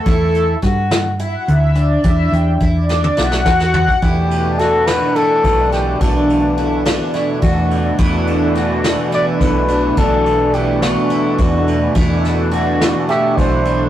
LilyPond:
<<
  \new Staff \with { instrumentName = "Trumpet" } { \time 7/8 \key e \minor \tempo 4 = 106 r2. r8 | r2. r8 | g'4 a'8 b'8 a'4 g'8 | d'4. r2 |
r2 d''8 b'4 | a'4 g'8 fis'4. r8 | r2 e''8 c''4 | }
  \new Staff \with { instrumentName = "Clean electric guitar" } { \time 7/8 \key e \minor r2. r8 | r2. r8 | r2. r8 | r2. r8 |
r2. r8 | r4. b4. r8 | r2 g'8 e'4 | }
  \new Staff \with { instrumentName = "Twelve-string acoustic guitar" } { \time 7/8 \key e \minor e'4 fis'4 e'4 d'8 | d'4 e'8 d'8 e'8 fis'4 | e'4 fis'4 e'4 d'8 | d'4 e'8 d'8 e'8 fis'4 |
e'4 fis'4 e'4 d'8 | d'4 e'8 d'8 e'8 fis'4 | e'4 fis'4 e'4 d'8 | }
  \new Staff \with { instrumentName = "Analog synth pad" } { \time 7/8 \key e \minor a'8. r4 r16 e''16 fis''16 e''8 d''8 | e''8 g''8 e''16 d''8. fis''4. | <b, e a d'>2.~ <b, e a d'>8~ | <b, e a d'>2.~ <b, e a d'>8 |
<b, e a d'>2.~ <b, e a d'>8~ | <b, e a d'>2.~ <b, e a d'>8 | <b, e a d'>2.~ <b, e a d'>8 | }
  \new Staff \with { instrumentName = "Fingered electric bass" } { \clef bass \time 7/8 \key e \minor e,4 g,4. d,4 | e,8 e,8 e,4 b,,8 e,4 | e,2 r8 b,,4 | b,,2 r8 e,4 |
e,2 r8 b,,4 | b,,2 r8 e,4 | e,2 r8 b,,4 | }
  \new DrumStaff \with { instrumentName = "Drums" } \drummode { \time 7/8 <hh bd>8 hh8 <hh bd sn>8 <hh sn>8 hh8 hh8 hh8 | <hh bd>8 hh8 <hh bd>8 sn16 tommh16 sn16 sn16 <bd sn>16 sn16 tomfh16 bd16 | <bd cymr>8 cymr8 <cymr sn>8 <cymr sn>8 cymr8 <bd cymr>8 <cymr sn>8 | <bd cymr>8 cymr8 cymr8 <cymr sn>8 <cymr sn>8 <bd cymr>8 cymr8 |
<bd cymr>8 cymr8 <cymr sn>8 <cymr sn>8 <cymr sn>8 <bd cymr sn>8 cymr8 | <bd cymr>8 cymr8 cymr8 <cymr sn>8 cymr8 <bd cymr>8 cymr8 | <bd cymr>8 <cymr sn>8 cymr8 <cymr sn>8 <cymr sn>8 <bd cymr>8 cymr8 | }
>>